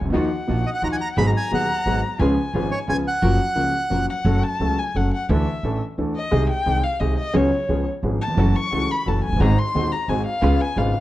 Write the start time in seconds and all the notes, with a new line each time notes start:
0.01 C2
0.05 C#2 D2
0.10 D2 D#2 D#3 F3 A#3 D#4 F4 F#4 F#5
0.14 D#2
0.47 A#1 A#2 F3 A#3 D#4 F4 F#4
0.66 D#5
0.74 F#5
0.82 D#2 D#3 F3 A#3 D#4 F4 F#4 A#5
0.93 G#5
1.01 A#5
1.16 G#1 G#2 F#3 B3 D#4 F#4 G#4 A#5 B5
1.27 A#5
1.37 G#5
1.51 D#1 D#2 F#3 B3 D#4 F#4 G#4 F#5
1.86 G#1 G#2 F#3 B3 D#4 F#4 G#4
2.19 C#2 C#3 F3 B3 C#4 F4 G#4 B4 G#5
2.53 G#1 G#2 F3 B3 C#4 F4 G#4 B4
2.71 C#5
2.87 C#2 C#3 F3 B3 C#4 F4 G#4 B4 G#5
3.08 F#5
3.22 F#1 F#2 F3 F#3 A#3 C#4 F4 F#4 A#4
3.55 C#2 C#3 F3 A#3 C#4 F4 F#4 A#4
3.90 F#1 F#2 F3 F#3 A#3 C#4 F4 F#4 A#4
4.10 F#5
4.25 F#1 F#2 F#3 A3 C#4 A4
4.43 A5
4.60 C#2 C#3 F#3 A3 C#4 A4
4.78 G#5
4.95 F#1 F#2 F#3 A3 C#4 A4 F#5
5.13 F#5
5.29 D2 D3 E3 A3 D4 A4 E5
5.63 A1 A2 E3 A3 D4 A4
5.98 D2 D3 E3 A3 D4 A4
6.16 D#5
6.31 C2 C3 D#3 G#3 C4 G#4
6.49 G5
6.66 C2 C3 D#3 G#3 C4 G#4
6.83 F5
7.00 C2 C3 D#3 G#3 C4 G#4 D#5
7.18 D#5
7.34 C#2 C#3 F#3 B3 C#4 G#4 C#5
7.69 C#2 C#3 F3 B3 C#4 G#4
8.03 G#1 G#2 F3 B3 C#4 G#4
8.21 A5
8.27 D#2 E2
8.34 F#1 F2 F#2 E3 F#3 A3 E4 F#4 A4
8.39 C#4 F#4
8.56 C#6
8.71 C#2 C#3 E3 A3 C#4 E4 F#4 A4
8.91 B5
9.06 F#1 F#2 E3 F#3 A3 C#4 E4 F#4 A4 A5
9.24 G#5
9.28 F1 F#1
9.36 G1 G#1 C4
9.40 G#1 G#2 D#3 G#3 C4 F#4 G#4 A#5
9.58 C6
9.75 D#1 D#2 D#3 G#3 C4 F#4 G#4
9.92 A#5
10.08 G#1 G#2 D#3 G#3 C4 F#4 G#4 G#5
10.26 F5
10.42 C#2 C#3 G#3 B3 C#4 F4 B4
10.61 G#5
10.76 G#1 G#2 C#3 G#3 B3 C#4 F4 B4 F5